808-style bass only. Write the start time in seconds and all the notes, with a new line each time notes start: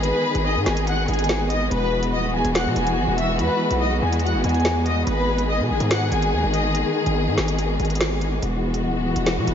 Already playing: G#1
0.35 G#1
0.56 G#2
0.66 G#1
1.08 G#1
1.71 E1
2.13 D#1
2.45 E1
2.66 B2
2.76 E1
2.97 G#1
3.08 E1
3.39 E2
3.71 B1
4.02 E2
4.34 G#1
4.44 E2
5.07 G#1
5.59 B2
5.70 G#1
5.80 G#2
6.12 G#1
6.33 D#2
6.43 G#1
7.06 G#1
7.27 G#2
7.38 G#1
7.80 G#1
8.43 E1
8.84 D#1
9.16 E1
9.37 B2
9.47 E1